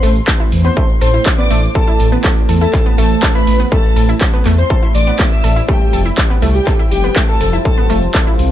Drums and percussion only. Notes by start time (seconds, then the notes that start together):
0.03 open hi-hat
0.15 shaker
0.28 kick, clap, shaker
0.40 shaker
0.52 open hi-hat
0.65 shaker
0.77 kick, shaker
0.89 shaker
1.01 open hi-hat
1.14 shaker
1.26 kick, clap, shaker
1.38 shaker
1.50 open hi-hat
1.63 shaker
1.75 kick, shaker
1.87 shaker
2.00 open hi-hat
2.12 shaker
2.24 kick, clap, shaker
2.37 shaker
2.49 open hi-hat
2.61 shaker
2.73 kick, clap, shaker
2.86 shaker
2.98 open hi-hat
3.10 shaker
3.23 kick, clap, shaker
3.35 shaker
3.47 open hi-hat
3.60 shaker
3.72 kick, shaker
3.84 shaker
3.96 open hi-hat
4.09 shaker
4.21 kick, clap, shaker
4.33 shaker
4.46 clap, open hi-hat
4.58 shaker
4.70 kick, shaker
4.83 shaker
4.95 open hi-hat
5.07 shaker
5.19 kick, clap, shaker
5.32 shaker
5.44 open hi-hat
5.56 shaker
5.69 kick, shaker
5.81 shaker
5.93 open hi-hat
6.06 shaker
6.18 kick, clap, shaker
6.30 shaker
6.42 open hi-hat
6.55 shaker
6.67 kick, clap, shaker
6.79 shaker
6.91 open hi-hat
7.04 shaker
7.16 kick, clap, shaker
7.29 shaker
7.41 open hi-hat
7.53 shaker
7.65 kick, shaker
7.78 shaker
7.90 open hi-hat
8.02 shaker
8.14 kick, clap, shaker
8.27 shaker
8.39 open hi-hat